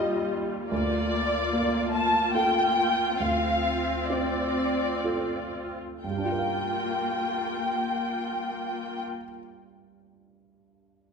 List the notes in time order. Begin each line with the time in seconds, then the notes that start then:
Already playing: D#2 G3 A#3 F4 G4 D#5
0.71 D2 A#3 F4 D5
1.53 A#3
1.93 A5
2.35 F4 A4 G5
3.20 D2 C4 F5
4.08 C4 D5
5.04 F4 A4
6.03 G2 A#3 F4 G5
6.11 G3
6.18 D4
6.25 F4
6.32 A#4
6.39 F5